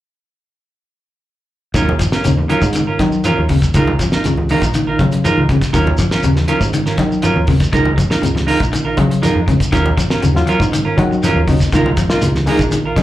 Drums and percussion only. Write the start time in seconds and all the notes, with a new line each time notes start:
1.74 kick, closed hi-hat, high conga, low conga, shekere
1.89 high conga
1.99 kick, snare, closed hi-hat, shekere
2.12 snare, shekere
2.24 closed hi-hat, high conga, shekere
2.38 high conga
2.50 closed hi-hat, shekere
2.62 kick, low conga, shekere
2.73 closed hi-hat, high conga, shekere
2.99 kick, snare, closed hi-hat, high conga
3.12 shekere
3.24 closed hi-hat, high conga, shekere
3.49 kick, open hi-hat, low conga, shekere
3.62 kick, closed hi-hat, shekere
3.74 kick, closed hi-hat, high conga, low conga, shekere
3.87 high conga
3.99 kick, snare, closed hi-hat, shekere
4.12 snare, shekere
4.24 closed hi-hat, high conga, shekere
4.37 high conga
4.49 open hi-hat, high conga, shekere
4.62 kick, closed hi-hat, shekere
4.74 closed hi-hat, high conga, shekere
4.99 kick, closed hi-hat, high conga
5.12 closed hi-hat, shekere
5.25 closed hi-hat, high conga, shekere
5.37 high conga
5.49 kick, closed hi-hat, low conga, shekere
5.61 kick, snare, closed hi-hat, shekere
5.74 kick, closed hi-hat, high conga, low conga, shekere
5.87 high conga
5.98 kick, closed hi-hat, shekere
6.11 snare, shekere
6.23 closed hi-hat, high conga, shekere
6.36 snare, high conga
6.48 closed hi-hat, shekere
6.61 kick, shekere
6.73 closed hi-hat, high conga, shekere
6.86 snare
6.98 kick, snare, closed hi-hat, high conga
7.12 shekere
7.22 closed hi-hat, high conga, shekere
7.36 high conga
7.47 kick, open hi-hat, low conga, shekere
7.60 kick, snare, closed hi-hat, shekere
7.73 kick, closed hi-hat, high conga, low conga, shekere
7.85 high conga
7.98 kick, closed hi-hat, shekere
8.11 snare, shekere
8.23 closed hi-hat, high conga, shekere
8.36 snare, high conga
8.48 open hi-hat, shekere
8.60 kick, closed hi-hat, low conga, shekere
8.73 closed hi-hat, high conga, shekere
8.97 kick, closed hi-hat, high conga
9.11 closed hi-hat, shekere
9.23 closed hi-hat, high conga, shekere
9.48 kick, closed hi-hat, low conga, shekere
9.60 kick, closed hi-hat, shekere
9.72 kick, snare, closed hi-hat, high conga, low conga, shekere
9.86 high conga
9.97 kick, snare, closed hi-hat, shekere
10.10 snare, shekere
10.23 closed hi-hat, high conga, shekere
10.36 snare, high conga
10.47 closed hi-hat, shekere
10.60 kick, low conga, shekere
10.73 closed hi-hat, high conga, shekere
10.98 kick, closed hi-hat, high conga
11.12 shekere
11.23 snare, closed hi-hat, high conga, shekere
11.37 high conga
11.48 kick, open hi-hat, low conga, shekere
11.60 kick, snare, closed hi-hat, shekere
11.72 kick, closed hi-hat, high conga, low conga, shekere
11.86 high conga
11.97 kick, closed hi-hat, shekere
12.10 snare, shekere
12.22 closed hi-hat, high conga, shekere
12.35 snare, high conga
12.46 open hi-hat, high conga, shekere
12.59 kick, closed hi-hat, shekere
12.72 closed hi-hat, high conga, shekere
12.96 kick, snare, closed hi-hat, high conga